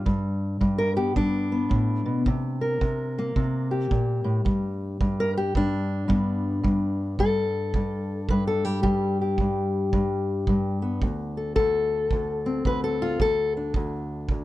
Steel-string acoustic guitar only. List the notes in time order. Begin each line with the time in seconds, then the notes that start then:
Already playing: G4
0.06 G2
0.61 G2
0.78 A#4
0.96 B3 G4
1.16 G2 D4
1.52 B3
1.69 A2
2.06 B2
2.27 C3
2.61 A#4
2.81 C3
3.19 A#3
3.36 C3
3.71 G4
3.91 A#2
4.24 A2
4.45 G2
5.01 G2
5.20 A#4
5.37 G4
5.55 G2 D4
6.08 G2 B3
6.63 G2
7.20 G2 A4
7.75 G2
8.30 G2 B4
8.47 A4
8.65 G3 G4
8.83 G2 G4
9.21 G4
9.40 G2
9.93 G2
10.49 G2
10.82 B3
11.03 D2
11.37 A4
11.56 D2 A4
12.12 D2
12.46 C4
12.66 D2 B4
12.84 A4
13.02 F4
13.20 D2 A4
13.57 D4
13.76 D2
14.31 D2